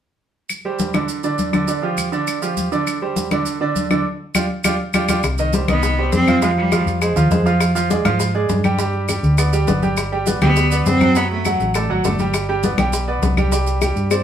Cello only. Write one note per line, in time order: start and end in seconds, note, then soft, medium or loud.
5.70 6.10 B3 medium
6.13 6.41 C4 medium
6.42 6.49 G#3 medium
6.58 6.85 G3 medium
10.42 10.83 B3 medium
10.86 11.18 C4 loud
11.16 11.31 B3 medium
11.31 11.58 A3 medium